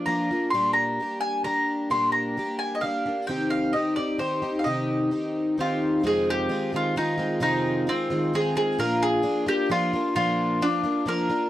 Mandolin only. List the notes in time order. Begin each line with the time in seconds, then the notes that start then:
0.06 A#5
0.50 C6
0.73 A#5
1.21 G#5
1.44 A#5
1.91 C6
2.12 A#5
2.59 G#5
2.75 D#5
2.81 F5
3.27 G5
3.50 F5
3.73 D#5
3.96 D5
4.19 C5
4.59 F5
4.64 D#5
5.61 F4
6.07 G#4
6.30 G4
6.76 F4
6.97 D#4
7.43 D#4
7.89 C4
8.35 G#4
8.57 G#4
8.79 A#4
9.03 G#4
9.48 G4
9.71 F4
10.16 F4
10.62 D4
11.08 A#4